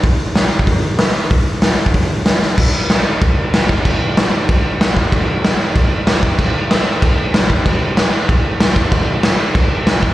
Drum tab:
CC |----------------|----------------|x---x---x---x---|x---x---x---x---|
HH |o---o---o---o---|o---o---o---o---|----------------|----------------|
SD |----o-------o---|----o-------o-o-|----o-------o---|----o-------o---|
BD |o------oo-------|o------oo-------|o-------o-----o-|o-------o-----o-|

CC |x---x---x---x---|x---x---x---x---|x---x---x---x---|x---x---x---x---|
HH |----------------|----------------|----------------|----------------|
SD |----o-------o---|----o-------o---|----o-------o---|----o-------o---|
BD |o-------o-----o-|o-------o-----o-|o-------o-----o-|o-------o-----o-|